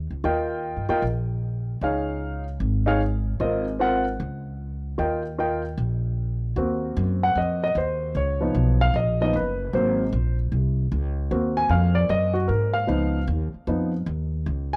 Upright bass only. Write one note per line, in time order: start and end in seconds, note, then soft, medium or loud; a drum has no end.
0.10 0.23 C#2 medium
0.24 0.73 D#2 medium
0.77 0.88 G2 medium
0.89 1.02 E2 medium
1.02 1.78 A#1 medium
1.81 2.57 C#2 medium
2.60 3.36 G#1 medium
3.40 4.15 G#1 medium
4.20 4.95 C#2 medium
4.99 5.74 D#2 medium
5.78 6.53 A#1 medium
6.56 6.95 D#2 medium
6.97 7.35 F#2 medium
7.35 7.74 F2 medium
7.75 8.14 D#2 medium
8.15 8.53 C#2 medium
8.55 8.93 B1 medium
8.94 9.32 A#1 medium
9.33 9.72 F#1 medium
9.73 10.11 G#1 medium
10.13 10.51 A#1 medium
10.52 10.90 C2 medium
10.92 11.30 C#2 medium
11.31 11.69 D#2 medium
11.69 12.08 F2 medium
12.09 12.48 F#2 medium
12.49 12.87 G#2 medium
12.88 13.27 C#2 medium
13.27 13.52 D#2 medium
13.54 muted upright bass stroke soft
13.67 14.06 F2 medium
14.06 14.45 D#2 medium
14.46 14.77 C#2 medium